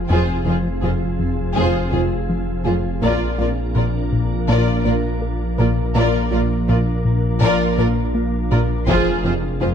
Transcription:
0.09 F1 F2 F3 C4 F4 G#4 C5
0.46 F1 F2 F3 C4 F4 G#4 C5
0.82 F1 F2 F4 G#4 C5
1.20 F2
1.55 F1 F2 F3 F4 G#4 C5
1.92 F1 F2 F4 G#4 C5
2.29 F3
2.65 F1 F2 F4 G#4 C5
3.02 A#1 A#2 F3 A#3 D4 F4 A#4 D5, taiko
3.38 A#1 A#2 A#3 F4 A#4 D5
3.75 A#1 A#2 F4 A#4 D5
4.12 A#2, taiko
4.48 A#1 A#2 A#3 F4 A#4 D5
4.85 A#1 A#2 F4 A#4 D5
5.22 A#3
5.58 A#1 A#2 F4 A#4 D5
5.95 A#1 A#2 F3 A#3 D4 F4 A#4 D5
6.31 A#1 A#2 A#3 F4 A#4 D5
6.68 A#1 A#2 F4 A#4 D5
7.05 A#2
7.41 A#1 A#2 A#3 F4 A#4 D5
7.78 A#1 A#2 F4 A#4 D5
8.15 A#3
8.51 A#1 A#2 F4 A#4 D5
8.87 F1 F2 F3 C4 F4 G#4 C5, taiko
9.24 F1 F2 F3 C4 F4 G#4 C5
9.61 F1 F2 F4 G#4 C5

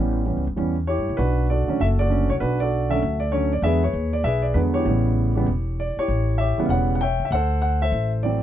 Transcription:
Already playing: A1 E3 G3 B3 C#4
0.25 E3 G3 B3 C#4
0.37 C#2
0.47 G1
0.56 E2 E3 G3 B3 C#4
0.87 E4 G4 C#5
0.98 G2
1.09 C#2
1.17 B1 D4 F#4 B4
1.50 F#4 A4 D5
1.68 D3 F#3 A3 C#4, muted upright bass stroke
1.80 F#1 A4 E5
1.99 F#4 A4 D5
2.09 D3 F#3 A3 C#4
2.29 C2 C#5
2.40 B1 D4 F#4 B4
2.60 F#4 A4 D5
2.90 D3 F#3 A3 C#4 A4 E5
3.02 D2
3.20 D5
3.32 D3 F#3 A3 C#4 C#5
3.53 D5
3.62 E2 D3 F#3 G#3 B3 G#4 B4 E5
3.84 G#4 C#5
3.93 D#2
4.13 D5
4.24 B1 G#4 B4 E5
4.42 D5
4.54 E2 D3 F#3 G#3 B3 B4
4.74 E4 G4 C#5
4.85 A1 C#3 E3 G3 B3
5.35 C#3 E3 G3 B3
5.46 E1
5.80 D5
5.97 E4 G4 C#5, muted upright bass stroke
6.08 A1
6.38 G4 C#5 E5
6.58 C#3 E3 G3 B3, muted upright bass stroke
6.66 E1 F5
6.70 C#5 F#5
6.95 F#5
7.01 C#5 E5 G5
7.20 C#2
7.25 E5
7.31 D2 A4 C5 F#5
7.62 F#5
7.82 A4 C5 E5
7.92 A1
8.23 E3 F#3 A3 C4 D5

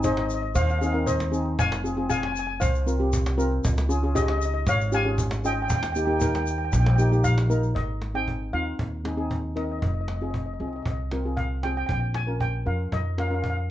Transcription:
Already playing: G#1
0.03 C4 D#4 G#4 C5 D#5, cajon bass, shaker
0.12 D#5
0.17 D#5, cajon slap
0.26 D#5
0.30 cajon slap, shaker
0.34 D#5
0.42 D#5, cajon slap
0.55 D#2 C5 F5, cajon bass, shaker
0.62 F5
0.69 F5, shaker
0.79 C4 D#4 G#4 F5, shaker
0.86 F5
0.93 C4 D#4 A#4 F5, cajon slap
1.06 C5 D#5, cajon bass, shaker
1.20 cajon slap, shaker
1.32 C4 D#4 G#4, cajon slap, shaker
1.46 cajon slap
1.59 F1 F5 G#5, cajon bass, shaker
1.72 cajon slap, shaker
1.84 C4 F4 G#4, cajon slap, shaker
1.97 C4 F4 G#4, cajon slap
2.09 C4 F4 G#4 F5 G#5, cajon bass, shaker
2.18 G#5
2.23 G#5, cajon slap
2.32 G#5, cajon slap, shaker
2.39 G#5
2.47 G#5, cajon slap
2.60 C2 C5 F5, cajon bass, shaker
2.75 shaker
2.86 C4 F4 A#4, cajon slap, shaker
2.99 C4 F4 G4, cajon slap
3.13 cajon bass, shaker
3.26 cajon slap, shaker
3.38 C4 F4 A#4, cajon slap, shaker
3.52 cajon slap
3.64 C#2, cajon bass, shaker
3.78 cajon slap, shaker
3.89 C#4 F4 G#4, cajon slap, shaker
4.03 C#4 F4 G#4, cajon slap
4.15 C#4 F4 G4 G#4 D#5, cajon bass, shaker
4.22 D#5
4.28 D#5, cajon slap
4.38 D#5, cajon slap, shaker
4.45 D#5
4.54 D#5, cajon slap
4.67 G#1 C#5 F5, cajon bass, shaker
4.81 shaker
4.92 C#4 F4 G4 F5 G#5, cajon slap, shaker
5.05 C#4 F4 G#4, cajon slap
5.18 cajon bass, shaker
5.31 cajon slap, shaker
5.44 C#4 F4 G#4 D#5 G5, cajon slap, shaker
5.53 G5
5.57 cajon slap
5.62 G5
5.68 D#2 G5, cajon bass, shaker
5.76 G5
5.83 G5, cajon slap, shaker
5.92 A#3 D#4 G4 G5, cajon slap, shaker
5.99 G5
6.05 A#3 D#4 G4 G5, cajon slap
6.13 G5
6.20 A#3 D#4 A#4 G5, cajon bass, shaker
6.27 G5
6.34 G5, cajon slap, shaker
6.43 G5
6.47 cajon slap, shaker
6.51 G5
6.58 G5, cajon slap
6.65 G5
6.72 A#1 G5, cajon bass, shaker
6.80 G5
6.86 G5, cajon slap
6.96 A#3 D#4 G4 G5, shaker
7.01 G5
7.12 A#3 D#4 G4, cajon slap, shaker
7.24 F5, cajon bass, shaker
7.38 cajon slap, shaker
7.49 A#3 D#4 A#4, shaker
7.63 cajon slap, shaker
7.75 G#1 D#5, cajon bass
8.02 cajon slap
8.14 C4 D#4 G#4 G5, cajon slap
8.28 cajon bass
8.53 D#2 C4 D#4 F4 F5, cajon slap
8.66 cajon slap
8.79 D#2, cajon bass
9.05 C4 D#4 G#4, cajon slap
9.17 C4 D#4 G#4, cajon slap
9.31 cajon bass
9.55 C4 D#4 A#4 D#5, cajon slap
9.64 D#5
9.70 D#5, cajon slap
9.79 F1 D#5, cajon bass
9.86 D#5
9.94 D#5
10.01 D#5
10.08 D#5, cajon slap
10.16 D#5
10.21 C4 F4 G#4 D#5, cajon slap
10.31 D#5, cajon bass
10.39 D#5
10.46 D#5
10.53 D#5
10.60 C2 C4 F4 G#4 D#5, cajon slap
10.68 D#5
10.73 D#5, cajon slap
10.82 C2 D#5, cajon bass
10.91 D#5
11.11 C4 F4 A#4, cajon slap
11.24 C4 F4 G#4, cajon slap
11.37 F5, cajon bass
11.63 C4 F4 G#4 G5, cajon slap
11.71 G5
11.76 G5, cajon slap
11.86 A#1 G5, cajon bass
11.92 G5
12.00 G5
12.14 G#5, cajon slap
12.27 C#4 F4 A#4, cajon slap
12.40 G5, cajon bass
12.66 F2 C#4 F4 A#4 F5, cajon slap
12.79 cajon slap
12.92 F2 D#5, cajon bass
13.18 C#4 F4 A#4 F5, cajon slap
13.28 C#4 F4 A#4 F5, cajon slap
13.34 F5
13.42 F5, cajon bass
13.50 F5
13.57 F5

